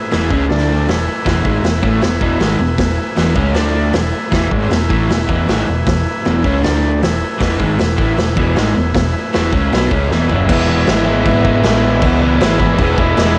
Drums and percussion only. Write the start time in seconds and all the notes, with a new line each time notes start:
0.11 snare, open hi-hat
0.30 kick
0.49 snare, open hi-hat
0.88 snare, open hi-hat
1.26 kick, snare, open hi-hat
1.45 kick
1.64 snare, open hi-hat
1.83 kick
2.01 snare, open hi-hat
2.21 kick
2.40 snare, open hi-hat
2.78 kick, snare, open hi-hat
3.16 snare, open hi-hat
3.36 kick
3.54 snare, open hi-hat
3.93 snare, open hi-hat
4.32 kick, snare, open hi-hat
4.51 kick
4.71 snare, open hi-hat
4.90 kick
5.10 snare, open hi-hat
5.29 kick
5.48 snare, open hi-hat
5.87 kick, snare, open hi-hat
6.25 snare, open hi-hat
6.44 kick
6.64 snare, open hi-hat
7.02 snare, open hi-hat
7.40 kick, snare, open hi-hat
7.60 kick
7.79 snare, open hi-hat
7.98 kick
8.17 snare, open hi-hat
8.37 kick
8.56 snare, open hi-hat
8.94 kick, snare, open hi-hat
9.33 snare, open hi-hat
9.52 kick
9.72 snare, open hi-hat
9.91 kick
10.11 snare
10.30 floor tom
10.49 kick, crash
10.87 snare, crash
11.25 kick, crash
11.45 kick
11.63 snare, crash
12.02 kick, crash
12.40 snare, crash
12.60 kick
12.78 kick, crash
12.98 kick
13.17 snare, crash